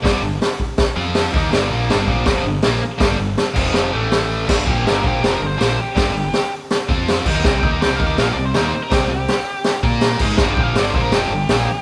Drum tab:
CC |--------|--------|---x----|x-------|
HH |o-o-o-o-|o-o-o-o-|o-o---o-|--o-o-o-|
SD |o-o-o-o-|o-o-o-o-|o-o-o-o-|o-o-o-o-|
BD |o--oo--o|---oo---|o--o----|oo-o----|

CC |-------x|--------|-------x|--------|
HH |o-o-o-o-|--o-o-o-|o-o-o-o-|--o-o-o-|
SD |o-o-o-o-|o-o-o-o-|o-o-o-o-|o-o-o-o-|
BD |o----o-o|oo-o----|o----o-o|oo-o----|